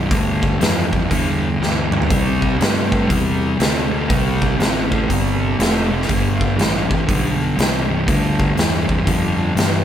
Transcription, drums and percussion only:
0.11 kick loud
0.11 open hi-hat soft
0.43 kick medium
0.61 snare loud
0.61 open hi-hat soft
0.93 kick medium
1.11 kick medium
1.11 open hi-hat medium
1.63 snare medium
1.92 mid tom medium
2.02 floor tom medium
2.10 kick loud
2.10 open hi-hat medium
2.42 kick medium
2.61 snare loud
2.61 open hi-hat medium
2.92 kick medium
3.10 kick medium
3.10 open hi-hat medium
3.60 snare loud
3.60 open hi-hat medium
4.10 kick loud
4.10 open hi-hat soft
4.42 kick medium
4.60 snare loud
4.60 open hi-hat soft
4.92 kick medium
5.10 kick medium
5.10 open hi-hat medium
5.60 snare loud
5.60 open hi-hat medium
6.02 snare soft
6.09 kick medium
6.09 open hi-hat medium
6.41 kick medium
6.59 snare loud
6.59 open hi-hat medium
6.91 kick medium
7.09 kick medium
7.09 open hi-hat medium
7.59 snare loud
7.59 open hi-hat medium
8.08 kick loud
8.08 open hi-hat medium
8.40 kick medium
8.58 snare loud
8.58 open hi-hat medium
8.89 kick medium
9.07 kick medium
9.07 open hi-hat soft
9.57 snare loud
9.57 open hi-hat medium

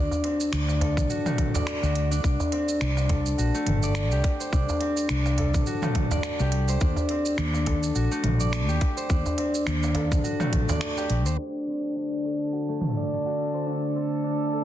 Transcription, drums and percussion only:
0.11 darbuka ka soft
0.11 darbuka dum medium
0.11 shaker soft
0.24 closed hi-hat medium
0.24 darbuka tek soft
0.40 shaker medium
0.53 finger snap medium
0.53 shaker medium
0.69 darbuka tek medium
0.69 shaker soft
0.81 closed hi-hat medium
0.81 darbuka ka medium
0.81 darbuka dum medium
0.97 kick loud
0.97 mid tom medium
0.97 shaker medium
1.10 shaker medium
1.26 mid tom medium
1.26 darbuka tek medium
1.26 shaker soft
1.38 kick medium
1.38 closed hi-hat medium
1.38 mid tom medium
1.55 darbuka tek medium
1.55 darbuka dum medium
1.55 shaker medium
1.67 finger snap loud
1.67 shaker medium
1.83 darbuka ka medium
1.83 shaker soft
1.95 closed hi-hat medium
2.11 darbuka ka soft
2.11 shaker medium
2.24 kick loud
2.24 shaker soft
2.40 darbuka dum medium
2.40 shaker soft
2.52 closed hi-hat medium
2.52 darbuka tek soft
2.69 shaker medium
2.81 finger snap medium
2.81 shaker medium
2.97 darbuka tek medium
2.97 shaker soft
3.09 kick medium
3.09 closed hi-hat medium
3.09 darbuka dum medium
3.26 shaker medium
3.39 shaker medium
3.55 shaker soft
3.66 closed hi-hat medium
3.66 mid tom medium
3.66 darbuka ka soft
3.83 shaker medium
3.95 finger snap medium
3.95 shaker medium
4.11 shaker soft
4.24 kick loud
4.24 closed hi-hat medium
4.24 darbuka ka soft
4.39 darbuka tek soft
4.39 shaker medium
4.53 kick loud
4.53 shaker soft
4.69 darbuka ka soft
4.69 darbuka dum medium
4.69 shaker soft
4.80 closed hi-hat medium
4.80 darbuka tek soft
4.97 shaker medium
5.09 finger snap medium
5.09 shaker soft
5.26 darbuka tek medium
5.26 shaker soft
5.38 closed hi-hat medium
5.38 darbuka ka medium
5.38 darbuka dum medium
5.54 kick loud
5.54 mid tom medium
5.54 shaker medium
5.66 shaker medium
5.82 mid tom medium
5.82 darbuka tek medium
5.82 shaker soft
5.95 kick medium
5.95 closed hi-hat medium
5.95 mid tom medium
6.11 darbuka tek medium
6.11 darbuka dum medium
6.11 shaker medium
6.23 finger snap medium
6.23 shaker medium
6.39 darbuka ka medium
6.39 shaker soft
6.52 closed hi-hat medium
6.68 darbuka ka soft
6.68 shaker medium
6.81 kick loud
6.81 shaker soft
6.96 darbuka dum medium
6.96 shaker soft
7.09 closed hi-hat medium
7.09 darbuka tek soft
7.26 shaker medium
7.38 finger snap loud
7.38 shaker soft
7.54 darbuka tek medium
7.54 shaker soft
7.66 kick medium
7.66 closed hi-hat medium
7.66 darbuka dum medium
7.83 shaker medium
7.95 shaker medium
8.12 shaker soft
8.24 closed hi-hat medium
8.24 mid tom medium
8.24 darbuka ka medium
8.40 shaker medium
8.53 finger snap loud
8.53 shaker medium
8.69 shaker soft
8.81 kick loud
8.81 closed hi-hat medium
8.81 darbuka ka soft
8.97 darbuka tek soft
8.97 shaker medium
9.10 kick loud
9.10 shaker soft
9.26 darbuka ka soft
9.26 darbuka dum medium
9.26 shaker soft
9.38 closed hi-hat loud
9.38 darbuka tek soft
9.54 shaker medium
9.67 finger snap loud
9.67 shaker soft
9.83 darbuka tek medium
9.83 shaker soft
9.95 closed hi-hat medium
9.95 darbuka ka medium
9.95 darbuka dum medium
10.12 kick loud
10.12 mid tom medium
10.12 shaker medium
10.24 shaker medium
10.40 mid tom medium
10.40 darbuka tek medium
10.40 shaker soft
10.53 kick medium
10.53 closed hi-hat loud
10.53 mid tom medium
10.69 darbuka tek medium
10.69 darbuka dum medium
10.69 shaker medium
10.81 finger snap loud
10.81 shaker medium
10.97 darbuka ka medium
10.97 shaker soft
11.10 closed hi-hat medium
11.26 darbuka ka soft
11.26 shaker medium
12.81 mid tom medium

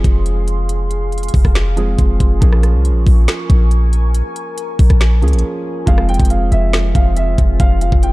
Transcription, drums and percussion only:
0.04 kick loud
0.04 closed hi-hat medium
0.26 closed hi-hat medium
0.48 closed hi-hat medium
0.69 closed hi-hat medium
0.91 closed hi-hat medium
1.12 closed hi-hat medium
1.18 closed hi-hat medium
1.23 closed hi-hat medium
1.28 closed hi-hat medium
1.34 kick loud
1.34 open hi-hat medium
1.45 kick medium
1.45 cross-stick medium
1.55 finger snap medium
1.55 snare loud
1.55 closed hi-hat medium
1.77 closed hi-hat medium
1.98 kick medium
1.98 closed hi-hat medium
2.20 kick medium
2.20 closed hi-hat medium
2.42 kick loud
2.42 closed hi-hat medium
2.53 cross-stick medium
2.63 cross-stick medium
2.63 closed hi-hat medium
2.85 closed hi-hat medium
3.07 kick loud
3.07 open hi-hat medium
3.28 finger snap medium
3.28 snare loud
3.28 closed hi-hat medium
3.50 kick loud
3.50 closed hi-hat medium
3.71 closed hi-hat medium
3.93 closed hi-hat medium
4.14 closed hi-hat medium
4.36 closed hi-hat medium
4.58 closed hi-hat medium
4.79 kick loud
4.79 closed hi-hat medium
4.79 open hi-hat medium
4.90 kick medium
4.90 cross-stick medium
4.90 closed hi-hat medium
5.01 finger snap medium
5.01 snare loud
5.01 closed hi-hat medium
5.22 closed hi-hat soft
5.28 closed hi-hat medium
5.33 closed hi-hat medium
5.39 closed hi-hat medium
5.87 kick loud
5.87 closed hi-hat medium
5.98 cross-stick loud
6.09 closed hi-hat soft
6.14 closed hi-hat medium
6.20 kick loud
6.20 closed hi-hat medium
6.25 closed hi-hat medium
6.30 closed hi-hat medium
6.52 closed hi-hat medium
6.73 finger snap medium
6.73 snare loud
6.73 closed hi-hat medium
6.95 kick loud
6.95 closed hi-hat medium
7.16 closed hi-hat medium
7.38 kick loud
7.38 closed hi-hat medium
7.60 kick loud
7.60 closed hi-hat medium
7.81 closed hi-hat medium
7.92 kick loud
8.03 closed hi-hat medium

